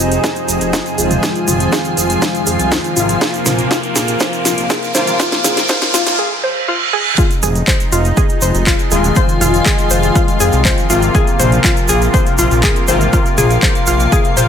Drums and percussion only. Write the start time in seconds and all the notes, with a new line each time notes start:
0.12 closed hi-hat, shaker
0.24 kick, snare, closed hi-hat, shaker
0.36 closed hi-hat, shaker
0.48 open hi-hat, shaker
0.61 closed hi-hat, shaker
0.73 kick, snare, closed hi-hat, shaker
0.86 closed hi-hat, shaker
0.98 open hi-hat, shaker
1.11 closed hi-hat, mid tom, shaker
1.23 kick, snare, closed hi-hat, shaker
1.36 closed hi-hat, shaker
1.48 mid tom, open hi-hat, shaker
1.60 closed hi-hat, shaker
1.72 kick, snare, closed hi-hat, shaker
1.84 closed hi-hat, shaker
1.97 open hi-hat, shaker
2.10 closed hi-hat, shaker
2.22 kick, snare, closed hi-hat, shaker
2.35 closed hi-hat, shaker
2.47 open hi-hat, shaker
2.59 closed hi-hat, shaker
2.72 kick, snare, closed hi-hat, shaker
2.84 closed hi-hat, shaker
2.96 open hi-hat, shaker
3.09 closed hi-hat, shaker
3.21 kick, snare, closed hi-hat, shaker
3.34 closed hi-hat, shaker
3.46 snare, mid tom, open hi-hat, shaker
3.59 closed hi-hat, shaker
3.71 kick, snare, closed hi-hat, shaker
3.83 closed hi-hat, shaker
3.96 snare, open hi-hat, shaker
4.08 closed hi-hat, shaker
4.20 kick, snare, closed hi-hat, shaker
4.33 closed hi-hat, shaker
4.45 snare, open hi-hat, shaker
4.58 closed hi-hat, shaker
4.70 kick, snare, closed hi-hat, shaker
4.83 closed hi-hat, shaker
4.95 snare, open hi-hat, shaker
5.07 closed hi-hat, mid tom, shaker
5.20 kick, snare, closed hi-hat, shaker
5.32 snare, closed hi-hat, shaker
5.44 snare, mid tom, open hi-hat, shaker
5.57 snare, closed hi-hat, shaker
5.68 kick, snare, closed hi-hat, shaker
5.82 snare, closed hi-hat, shaker
5.94 snare, open hi-hat, shaker
6.07 snare, closed hi-hat, shaker
7.18 kick, closed hi-hat, shaker
7.31 closed hi-hat, shaker
7.43 mid tom, open hi-hat, shaker
7.55 closed hi-hat, shaker
7.68 kick, clap, closed hi-hat, shaker
7.80 closed hi-hat, shaker
7.92 open hi-hat, shaker
8.05 closed hi-hat, shaker
8.17 kick, closed hi-hat, shaker
8.29 closed hi-hat, shaker
8.42 open hi-hat, shaker
8.55 closed hi-hat, shaker
8.67 kick, clap, closed hi-hat, shaker
8.79 closed hi-hat, shaker
8.91 open hi-hat, shaker
9.04 closed hi-hat, mid tom, shaker
9.16 kick, closed hi-hat, shaker
9.29 closed hi-hat, shaker
9.41 mid tom, open hi-hat, shaker
9.54 closed hi-hat, shaker
9.66 kick, clap, closed hi-hat, shaker
9.79 closed hi-hat, shaker
9.90 open hi-hat, shaker
10.03 closed hi-hat, shaker
10.15 kick, closed hi-hat, shaker
10.28 closed hi-hat, shaker
10.40 open hi-hat, shaker
10.52 closed hi-hat, shaker
10.65 kick, clap, closed hi-hat, shaker
10.78 closed hi-hat, shaker
10.90 open hi-hat, shaker
11.02 closed hi-hat, shaker
11.15 kick, closed hi-hat, shaker
11.27 closed hi-hat, shaker
11.39 mid tom, open hi-hat, shaker
11.52 closed hi-hat, shaker
11.64 kick, clap, closed hi-hat, shaker
11.77 closed hi-hat, shaker
11.88 open hi-hat, shaker
12.02 closed hi-hat, shaker
12.14 kick, closed hi-hat, shaker
12.26 closed hi-hat, shaker
12.38 open hi-hat, shaker
12.51 closed hi-hat, shaker
12.63 kick, clap, closed hi-hat, shaker
12.76 closed hi-hat, shaker
12.88 open hi-hat, shaker
13.01 closed hi-hat, mid tom, shaker
13.13 kick, closed hi-hat, shaker
13.26 closed hi-hat, shaker
13.38 mid tom, open hi-hat, shaker
13.50 closed hi-hat, shaker
13.62 kick, clap, closed hi-hat, shaker
13.75 closed hi-hat, shaker
13.87 open hi-hat, shaker
14.00 closed hi-hat, shaker
14.12 kick, closed hi-hat, shaker
14.25 closed hi-hat, shaker
14.37 open hi-hat, shaker